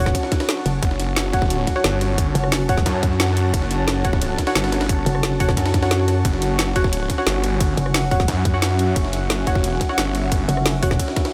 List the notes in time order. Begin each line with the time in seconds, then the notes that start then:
Already playing: F#1 C#4 F#4 C#5 F#5 A5
0.06 kick, cross-stick, snare
0.15 kick, closed hi-hat, ride
0.23 snare
0.32 kick, snare, closed hi-hat, ride
0.40 cross-stick, snare, ride
0.49 snare, closed hi-hat, ride
0.57 snare
0.66 F#1, closed hi-hat, ride
0.82 F#1 A5, kick, closed hi-hat, ride
0.91 snare
0.99 F#5, snare, closed hi-hat, ride
1.16 snare, closed hi-hat, ride
1.33 F#4 C#5 F#5, kick, closed hi-hat, ride
1.42 kick, snare
1.50 closed hi-hat, ride
1.67 kick, snare, closed hi-hat, ride
1.76 F#4 C#5 F#5, snare
1.84 G1, snare, closed hi-hat, ride
2.01 cross-stick, closed hi-hat, ride
2.18 kick, closed hi-hat, ride
2.35 F#1, closed hi-hat, ride
2.44 cross-stick
2.52 snare, closed hi-hat, open hi-hat
2.69 F#4 C#5 F#5, kick, open hi-hat, ride
2.77 kick, snare
2.86 F#2, kick, snare, closed hi-hat, ride
3.03 kick, closed hi-hat, ride
3.11 snare
3.20 snare, closed hi-hat, ride
3.28 snare
3.37 closed hi-hat
3.54 F#1, kick, closed hi-hat, ride
3.62 snare
3.71 A5, snare, closed hi-hat, ride
3.88 snare, closed hi-hat, ride
4.05 F#4 C#5 F#5, kick, closed hi-hat, ride
4.13 kick, snare
4.22 closed hi-hat, ride
4.38 kick, snare, closed hi-hat, ride
4.47 F#4 C#5 F#5, snare, ride
4.55 G1, snare, closed hi-hat, ride
4.64 snare, ride
4.72 cross-stick, snare, closed hi-hat, ride
4.81 snare, ride
4.89 kick, closed hi-hat, ride
5.06 F#1, closed hi-hat, ride
5.15 cross-stick
5.23 snare, closed hi-hat, ride
5.32 snare
5.40 F#4 C#5 F#5, kick, open hi-hat, ride
5.49 kick, cross-stick, snare
5.57 F#2, kick, snare, closed hi-hat, ride, swell
5.66 snare, ride
5.74 kick, snare, closed hi-hat, ride
5.83 F#4 C#5 F#5, snare, ride
5.91 snare, closed hi-hat, ride
6.00 snare
6.08 cross-stick, closed hi-hat, ride
6.25 F#1 F#5, kick, closed hi-hat, ride
6.33 snare
6.42 snare, closed hi-hat, ride
6.59 snare, closed hi-hat, ride
6.76 F#4 C#5 F#5, kick, closed hi-hat, ride
6.84 E5, kick, snare
6.93 closed hi-hat, ride
7.10 kick, snare, closed hi-hat, ride
7.18 F#4 C#5 F#5, snare
7.27 G1, snare, closed hi-hat, ride
7.44 cross-stick, closed hi-hat, ride
7.61 kick, closed hi-hat, ride
7.77 F#1, closed hi-hat, ride
7.86 cross-stick
7.94 snare, closed hi-hat, open hi-hat, ride
8.11 F#4 C#5 F#5, kick, open hi-hat, ride
8.20 kick, snare
8.28 F#2, kick, snare, closed hi-hat, ride
8.45 kick, closed hi-hat, ride
8.54 F#4 C#5 F#5, snare
8.62 snare, closed hi-hat, ride
8.71 snare
8.79 closed hi-hat, ride
8.96 F#1, kick, closed hi-hat, ride
9.05 snare
9.13 snare, closed hi-hat, ride
9.30 snare, closed hi-hat, ride
9.47 F#4 C#5 F#5, kick, closed hi-hat, ride
9.55 F1, kick, snare
9.64 closed hi-hat, ride
9.81 kick, snare, closed hi-hat, ride
9.89 F#4 C#5 F#5, snare
9.98 G1, snare, closed hi-hat, ride
10.15 cross-stick, closed hi-hat, ride
10.32 kick, closed hi-hat, ride
10.49 F#1, closed hi-hat, ride
10.57 cross-stick
10.66 snare, closed hi-hat, open hi-hat, ride
10.83 F#4 C#5 F#5, kick, open hi-hat, ride
10.91 kick, cross-stick, snare
11.00 kick, closed hi-hat, ride
11.08 snare
11.16 kick, snare, closed hi-hat, ride
11.25 cross-stick, snare, ride